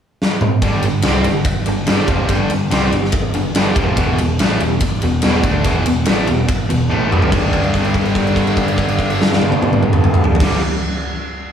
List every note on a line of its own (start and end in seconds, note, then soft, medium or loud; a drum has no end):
0.22 snare medium
0.41 mid tom medium
0.62 0.82 G1 medium
0.62 0.83 G2 medium
0.62 0.84 D3 medium
0.62 0.84 G3 medium
0.62 kick medium
0.62 ride medium
0.82 1.03 G1 medium
0.82 1.01 G2 medium
0.82 1.01 D3 medium
0.82 ride medium
1.02 1.24 C2 medium
1.02 1.25 C3 medium
1.02 1.25 G3 medium
1.02 1.25 C4 loud
1.02 snare loud
1.02 ride loud
1.24 1.44 G1 medium
1.24 1.43 G2 medium
1.24 1.43 D3 medium
1.24 ride medium
1.45 muted picked electric bass stroke soft
1.45 muted overdriven electric guitar stroke medium
1.45 kick loud
1.45 ride loud
1.66 1.87 G1 medium
1.66 1.84 G2 medium
1.66 1.84 D3 medium
1.66 ride medium
1.87 2.08 G1 medium
1.87 2.08 G2 medium
1.87 2.08 D3 medium
1.87 2.09 G3 loud
1.87 snare loud
1.87 ride medium
2.08 2.28 F1 medium
2.08 2.29 F2 medium
2.08 2.29 C3 loud
2.08 2.29 F3 medium
2.08 kick loud
2.08 ride medium
2.29 2.49 G1 medium
2.29 2.49 G2 loud
2.29 2.50 D3 medium
2.29 2.50 G3 loud
2.29 kick medium
2.29 ride medium
2.50 2.70 G1 medium
2.50 2.68 G2 medium
2.50 2.68 D3 medium
2.50 ride medium
2.71 2.92 C2 medium
2.71 2.92 C3 medium
2.71 2.92 G3 medium
2.71 2.92 C4 medium
2.71 snare loud
2.71 ride medium
2.92 3.12 G1 medium
2.92 3.09 G2 medium
2.92 3.10 D3 medium
2.92 ride medium
3.05 snare soft
3.12 muted picked electric bass stroke soft
3.12 muted overdriven electric guitar stroke medium
3.12 kick loud
3.12 ride loud
3.34 3.54 G1 medium
3.34 3.52 G2 medium
3.34 3.52 D3 medium
3.34 ride medium
3.55 3.75 G1 loud
3.55 3.76 G2 medium
3.55 3.77 D3 medium
3.55 3.77 G3 medium
3.55 snare loud
3.55 ride medium
3.76 3.96 F1 medium
3.76 3.97 F2 medium
3.76 3.97 C3 medium
3.76 3.98 F3 medium
3.76 kick loud
3.76 ride medium
3.96 4.16 E1 medium
3.96 4.18 E2 medium
3.96 4.18 B2 loud
3.96 4.19 E3 loud
3.96 kick medium
3.96 ride medium
4.18 4.39 E1 medium
4.18 4.36 E2 medium
4.18 4.36 B2 medium
4.18 ride medium
4.39 4.59 A1 medium
4.39 4.61 A2 medium
4.39 4.61 E3 loud
4.39 4.61 A3 loud
4.39 snare loud
4.39 ride medium
4.60 4.80 E1 medium
4.60 4.78 E2 medium
4.60 4.79 B2 medium
4.60 ride medium
4.80 muted picked electric bass stroke soft
4.80 muted overdriven electric guitar stroke medium
4.80 kick loud
4.80 ride loud
5.02 5.22 E1 medium
5.02 5.20 E2 medium
5.02 5.20 B2 medium
5.02 ride medium
5.22 5.42 E1 medium
5.22 5.44 E2 medium
5.22 5.44 B2 medium
5.22 5.44 E3 loud
5.22 snare loud
5.22 ride medium
5.43 5.63 D2 medium
5.43 5.65 D3 medium
5.43 5.65 A3 medium
5.43 5.65 D4 medium
5.43 kick loud
5.43 ride medium
5.64 5.85 E1 medium
5.64 5.85 E2 medium
5.64 5.85 B2 medium
5.64 5.86 E3 loud
5.64 kick medium
5.64 ride medium
5.86 6.07 E1 medium
5.86 6.03 E2 medium
5.86 6.03 B2 medium
5.86 ride medium
6.05 6.28 A1 medium
6.05 6.27 A2 medium
6.05 6.28 E3 medium
6.05 6.28 A3 loud
6.05 snare loud
6.05 ride medium
6.27 6.48 E1 medium
6.27 6.45 E2 medium
6.27 6.45 B2 medium
6.27 ride medium
6.48 muted overdriven electric guitar stroke medium
6.48 muted picked electric bass stroke soft
6.48 kick loud
6.48 ride loud
6.69 6.91 E1 medium
6.69 6.86 E2 medium
6.69 6.87 B2 medium
6.69 ride medium
6.90 7.12 A1 medium
6.90 7.10 A2 medium
6.90 7.11 E3 medium
6.90 7.11 A3 loud
6.90 high tom medium
7.10 7.32 G1 medium
7.10 7.30 G2 medium
7.10 7.32 D3 medium
7.10 7.32 G3 medium
7.10 mid tom medium
7.22 floor tom medium
7.31 10.32 G1 medium
7.31 10.39 G2 loud
7.31 10.42 D3 medium
7.31 kick medium
7.31 crash medium
7.35 10.43 G3 loud
7.53 kick medium
7.53 crash soft
7.63 crash soft
7.74 kick medium
7.74 crash soft
7.84 crash soft
7.94 kick medium
7.94 crash soft
8.05 crash soft
8.15 kick medium
8.15 crash soft
8.27 crash soft
8.36 kick medium
8.36 crash soft
8.47 crash medium
8.57 kick medium
8.57 crash soft
8.68 crash medium
8.78 kick medium
8.78 crash medium
8.89 crash medium
8.99 kick medium
8.99 crash soft
9.10 crash medium
9.22 snare loud
9.33 snare medium
9.41 high tom medium
9.52 high tom loud
9.62 high tom loud
9.73 mid tom medium
9.83 mid tom loud
9.93 mid tom loud
10.04 mid tom loud
10.14 mid tom loud
10.24 floor tom medium
10.35 floor tom loud
10.40 10.58 G1 medium
10.40 10.59 G2 medium
10.40 10.60 D3 medium
10.40 10.61 G3 loud
10.40 kick loud
10.40 snare loud
10.40 crash loud